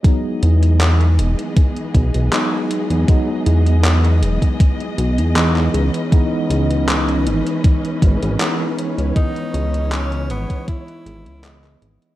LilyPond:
<<
  \new Staff \with { instrumentName = "String section" } { \time 4/4 \key e \major \tempo 4 = 79 << { dis''1~ | dis''1~ | dis''2.~ dis''8 cis''8~ | cis''1 | } \\ { <e b gis'>1~ | <e b gis'>2.~ <e b gis'>8 <e cis' b'>8~ | <e cis' b'>1~ | <e cis' b'>1 | } >> }
  \new Staff \with { instrumentName = "Tenor saxophone" } { \time 4/4 \key e \major r1 | r1 | r1 | dis'4 cis'8 b8 e'4. r8 | }
  \new Staff \with { instrumentName = "Tine electric piano" } { \time 4/4 \key e \major <fis gis b dis'>2. <fis gis b dis'>4 | <fis gis b dis'>2. <e gis b dis'>4 | <e gis b dis'>2. <e gis b dis'>4 | <e gis b dis''>2. <e gis b dis''>4 | }
  \new Staff \with { instrumentName = "Analog synth bass" } { \clef bass \time 4/4 \key e \major r8 e,4 e,,16 r8. b,,16 b,,16 r8. e,16 | r8 e,4 e,,16 r8. b,,16 e,8. cis,16 r16 | r8 cis,4 gis,,16 r8. gis,,16 gis,,16 r8. cis,16 | r8 cis,4 gis,,16 r8. gis,,16 cis,8. gis,,16 r16 | }
  \new DrumStaff \with { instrumentName = "Drums" } \drummode { \time 4/4 <hh bd>8 hh16 hh16 <hc hh>16 hh16 hh16 hh16 <hh bd>16 hh16 <hh bd>16 hh16 <hc hh>8 hh16 hh16 | <hh bd>8 hh16 hh16 <hc hh>16 hh16 hh16 <hh bd>16 <hh bd>16 hh16 hh16 hh16 <hc hh>16 hc16 hh16 hh16 | <hh bd>8 hh16 hh16 <hc hh>16 hh16 hh16 hh16 <hh bd>16 hh16 <hh bd>16 hh16 <hc hh>8 hh16 hh16 | <hh bd>16 hh16 hh16 hh16 <hc hh>16 hh16 hh16 <hh bd>16 <hh bd>16 hh16 hh16 hh16 <hc hh>16 <hc hh>16 hh16 hh16 | }
>>